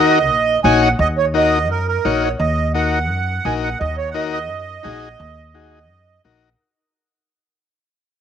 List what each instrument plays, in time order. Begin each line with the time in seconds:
Already playing: upright bass D#2, transistor combo organ D#4 F#4 A#4, accordion D#5
0.29 upright bass A#1
0.64 upright bass A#1, transistor combo organ D#4 F#4 C#5, accordion G#5
0.83 accordion F#5
0.99 upright bass D#2, accordion D#5
1.18 accordion C#5
1.34 transistor combo organ D#4 F#4 A#4, accordion D#5
1.69 upright bass F#2, accordion A#4
1.88 accordion A#4
2.05 upright bass A#1, transistor combo organ D#4 F#4 C#5
2.24 accordion C#5
2.40 upright bass D#2, accordion D#5
2.74 transistor combo organ D#4 F#4 A#4, accordion F#5
3.10 upright bass F#2
3.45 upright bass A#1, transistor combo organ D#4 F#4 A#4, accordion G#5
3.63 accordion F#5
3.80 upright bass D#2, accordion D#5
3.98 accordion C#5
4.11 transistor combo organ D#4, accordion F#5
4.15 transistor combo organ F#4 A#4, accordion D#5
4.33 accordion D#5
4.50 upright bass F#2
4.83 upright bass A#1, transistor combo organ D#4 F#4 G#4
5.20 upright bass D#2
5.54 transistor combo organ D#4 F#4 G#4
5.90 upright bass F#2
6.24 upright bass A#1, transistor combo organ D#4 F#4 A#4